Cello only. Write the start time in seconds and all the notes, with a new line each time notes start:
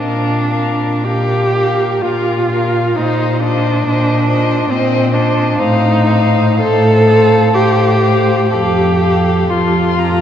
0.00 A#2
1.05 A#2
2.03 A#2
2.96 A#2
3.86 A#2
4.70 A#2
5.58 A2
6.60 A2
7.56 A2
8.53 F2
9.50 F2